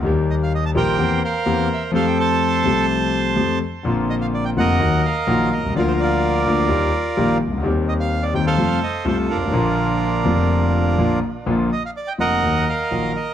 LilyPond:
<<
  \new Staff \with { instrumentName = "Bandoneon" } { \time 4/4 \key bes \major \tempo 4 = 126 << { r8 ees''16 f''16 ees''16 a''16 g''4 f''4 e''8 | f''16 g''16 a''2. r8 | r8 ees''16 f''16 d''16 g''16 ges''4 f''4 ees''8 | d''16 c''16 d''2. r8 |
r8 ees''16 f''8 d''16 g''16 f''8. ees''8 c''8 bes'8~ | bes'2.~ bes'8 r8 | r8 ees''16 f''16 d''16 g''16 ges''4 f''4 ees''8 | } \\ { r4. <bes' c''>4 <bes' c''>4. | <a' c''>8 c''2. r8 | r4. <bes' ees''>4 bes'4. | <f' bes'>8 <f' bes'>2. r8 |
r4. r16 <a' c''>4.~ <a' c''>16 <d' f'>8~ | <d' f'>2.~ <d' f'>8 r8 | r4. <bes' ees''>4 bes'4. | } >> }
  \new Staff \with { instrumentName = "Grand piano" } { \clef bass \time 4/4 \key bes \major <ees, ees g bes g'>4. <bes,, bes, ees g bes g'>8 <e, e bes c' g'>8 r8 <e, e bes c' g'>8 r8 | <f, f a c' g'>4. <c, c f a c' g'>4. <f, f a c' g'>8 r8 | <bes,, bes, d bes c' f'>4. <f,, f, d bes c' f'>8 <ees, ees ges bes ges'>8 r8 <bes,, bes, ees ges bes ges'>8 r32 ces,32 c,32 des,32 | <d, d f bes f'>4. <d, d f bes f'>8 <ees, ees g bes g'>8 r8 <bes,, bes, ees g bes g'>8 r32 c,32 des,32 d,32 |
<ees, ees g c' g'>4. <ees, ees g c' g'>8 <f, c f g a f'>8 r8 <c, c g a f'>8 r32 g,,32 aes,,32 a,,32 | <bes,, bes, d f bes f'>4. <f,, f, d f bes f'>4. <bes,, bes, d f bes f'>8 r8 | <bes,, bes, d f bes f'>8 r4 <f,, f, d f bes f'>8 <ees, ees ges bes ges'>8 r8 <bes,, bes, ees ges bes ges'>8 r8 | }
>>